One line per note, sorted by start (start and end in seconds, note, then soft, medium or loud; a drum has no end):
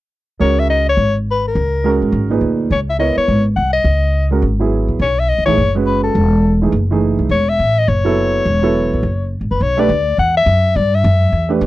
0.40 0.95 C#2 medium
0.40 0.83 G#3 medium
0.40 0.83 C#4 medium
0.40 0.83 F#4 medium
0.40 0.84 A#4 medium
0.40 0.61 C#5 medium
0.59 0.70 E5 medium
0.70 0.86 D#5 medium
0.89 1.15 C#5 medium
0.97 1.52 G#1 medium
1.31 1.45 B4 medium
1.48 2.00 A#4 medium
1.55 1.99 C#2 medium
1.84 2.27 G#3 medium
1.84 2.27 C#4 medium
1.84 2.28 F#4 medium
1.84 2.28 A#4 medium
2.02 2.12 G#2 medium
2.12 2.39 G#1 medium
2.30 2.68 A#2 medium
2.30 2.68 D#4 medium
2.30 2.68 G#4 medium
2.30 2.69 B4 medium
2.41 2.68 D2 medium
2.70 3.14 C#2 medium
2.70 2.80 C#5 medium
2.90 2.99 E5 medium
2.99 3.42 B3 medium
2.99 3.42 E4 soft
2.99 3.42 A#4 soft
2.99 3.43 C#5 medium
2.99 3.16 D#5 medium
3.17 3.44 C#5 medium
3.17 muted upright bass stroke soft
3.28 3.55 G#1 medium
3.56 3.83 C2 medium
3.56 3.72 F#5 medium
3.73 4.27 D#5 medium
3.84 4.39 C#2 medium
4.31 4.41 G#3 medium
4.31 4.42 C#4 medium
4.31 4.42 F#4 medium
4.31 4.42 A#4 medium
4.42 4.86 G#1 medium
4.59 4.98 F#3 medium
4.59 4.98 B3 soft
4.59 4.98 E4 medium
4.59 4.98 G#4 medium
4.88 4.99 A#1 medium
4.99 5.36 B1 medium
4.99 5.21 C#5 medium
5.19 5.30 E5 medium
5.29 5.45 D#5 medium
5.38 5.47 C#2 medium
5.45 5.57 A#1 medium
5.45 5.56 E3 medium
5.45 5.57 A3 medium
5.45 5.57 D#4 medium
5.45 5.57 G#4 medium
5.45 5.73 C#5 medium
5.58 6.12 F#1 medium
5.75 6.13 G#3 medium
5.75 6.13 C#4 medium
5.75 6.14 F#4 medium
5.75 6.14 B4 medium
5.86 6.03 B4 medium
6.03 6.57 A4 medium
6.15 6.70 E1 medium
6.62 6.72 E3 medium
6.62 6.72 A3 medium
6.62 6.72 D#4 soft
6.62 6.72 G#4 medium
6.72 7.16 F#1 medium
6.91 7.28 E3 medium
6.91 7.29 A3 medium
6.91 7.29 D#4 medium
6.91 7.29 G#4 medium
7.19 7.29 C2 medium
7.29 7.57 E1 medium
7.29 7.51 C#5 medium
7.49 7.80 E5 medium
7.59 7.86 A1 medium
7.79 7.90 D#5 medium
7.88 8.43 F#1 medium
7.88 9.32 C#5 medium
8.05 8.43 F#3 medium
8.05 8.43 B3 medium
8.05 8.43 E4 medium
8.05 8.43 A4 medium
8.46 8.89 E1 medium
8.62 9.00 F#3 medium
8.62 9.00 B3 medium
8.62 9.01 E4 medium
8.62 9.01 A4 medium
8.93 9.02 A#1 medium
9.03 9.39 F#1 medium
9.41 9.50 G#1 medium
9.51 9.60 F#1 medium
9.51 9.64 B4 medium
9.60 9.88 B1 medium
9.60 9.81 C#5 medium
9.77 9.88 A3 medium
9.77 9.88 D4 medium
9.77 9.88 G4 medium
9.77 9.89 B4 medium
9.77 10.19 D5 medium
9.89 10.17 D2 medium
10.18 10.46 E2 medium
10.18 10.35 F#5 medium
10.37 10.77 E5 loud
10.46 10.74 F#2 medium
10.76 11.03 G2 medium
10.76 10.97 D5 medium
10.95 11.51 E5 medium
11.04 11.32 F#2 medium
11.32 11.60 E2 medium
11.49 11.66 A3 medium
11.49 11.66 D4 medium
11.49 11.66 G4 medium
11.49 11.66 B4 medium
11.61 11.66 A1 medium